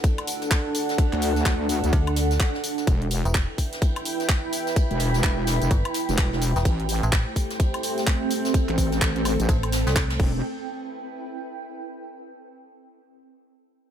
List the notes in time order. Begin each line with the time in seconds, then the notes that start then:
Already playing: D4 A4 B4 F#5
0.03 kick, closed hi-hat, ride, tambourine
0.18 closed hi-hat, ride, high woodblock
0.27 open hi-hat, ride, tambourine
0.42 snare, closed hi-hat, tambourine
0.51 kick, snare, clap, closed hi-hat, ride, tambourine
0.74 open hi-hat, ride, tambourine
0.89 snare, closed hi-hat, tambourine
0.98 kick, closed hi-hat, ride, tambourine
1.12 D2, clap, closed hi-hat, ride
1.22 open hi-hat, ride, tambourine
1.36 snare, closed hi-hat, tambourine
1.45 D2, kick, snare, clap, closed hi-hat, ride, tambourine
1.69 open hi-hat, ride, tambourine
1.84 D2, closed hi-hat, tambourine
1.92 D2, kick, closed hi-hat, ride, tambourine
2.07 closed hi-hat, high woodblock
2.16 snare, open hi-hat, ride, tambourine
2.31 snare, closed hi-hat, tambourine
2.40 kick, snare, clap, closed hi-hat, ride, tambourine
2.54 snare
2.64 open hi-hat, ride, tambourine
2.78 snare, closed hi-hat, tambourine
2.87 E1 E4 B4 G5, kick, closed hi-hat, ride, tambourine
3.02 G5, closed hi-hat
3.09 B5, open hi-hat, ride, tambourine
3.25 E1, closed hi-hat, tambourine
3.34 kick, snare, clap, closed hi-hat, ride
3.58 kick, open hi-hat, ride, tambourine
3.73 snare, closed hi-hat, tambourine
3.82 kick, closed hi-hat, ride, tambourine
3.96 closed hi-hat, ride, high woodblock
4.05 open hi-hat, ride, tambourine
4.20 snare, closed hi-hat, tambourine
4.29 kick, snare, clap, closed hi-hat, ride, tambourine
4.53 open hi-hat, ride, tambourine
4.67 snare, closed hi-hat, tambourine
4.76 kick, closed hi-hat, ride, tambourine
4.91 E1, closed hi-hat, ride
5.00 open hi-hat, ride, tambourine
5.14 snare, closed hi-hat, tambourine
5.23 E1, kick, snare, clap, closed hi-hat, ride, tambourine
5.47 snare, open hi-hat, ride, tambourine
5.62 E1, closed hi-hat, tambourine
5.70 G1, kick, closed hi-hat, ride, tambourine
5.85 closed hi-hat, high woodblock
5.94 snare, open hi-hat, ride, tambourine
6.09 E1, snare, closed hi-hat, tambourine
6.18 kick, snare, clap, closed hi-hat, ride
6.32 E1, snare
6.42 open hi-hat, ride, tambourine
6.56 E1, snare, closed hi-hat, tambourine
6.65 A1 A3 C4 G4 C5, kick, closed hi-hat, ride, tambourine
6.80 closed hi-hat
6.89 open hi-hat, ride, tambourine
6.96 A4
7.03 A1, closed hi-hat, tambourine
7.12 kick, snare, clap, closed hi-hat, ride, tambourine
7.36 kick, open hi-hat, ride, tambourine
7.50 snare, closed hi-hat, tambourine
7.59 kick, closed hi-hat, ride, tambourine
7.74 closed hi-hat, ride, high woodblock
7.83 open hi-hat, ride, tambourine
7.98 snare, closed hi-hat, tambourine
8.07 kick, snare, clap, closed hi-hat, ride, tambourine
8.31 open hi-hat, ride, tambourine
8.45 snare, closed hi-hat, tambourine
8.54 A4, kick, closed hi-hat, ride, tambourine
8.68 A1, clap, closed hi-hat, ride
8.77 kick, open hi-hat, ride, tambourine
8.92 snare, closed hi-hat, tambourine
9.01 A1, kick, snare, clap, closed hi-hat, ride, tambourine
9.16 closed hi-hat
9.25 open hi-hat, ride, tambourine, high woodblock
9.40 A1, closed hi-hat, tambourine
9.49 A1, kick, closed hi-hat, ride, tambourine
9.63 closed hi-hat, high woodblock
9.72 snare, open hi-hat, ride, tambourine
9.87 C2, snare, closed hi-hat, ride, tambourine
9.96 kick, snare, clap, closed hi-hat, tambourine
10.10 snare, closed hi-hat, ride
10.20 E1 E4, kick, crash
10.28 B4
10.59 G5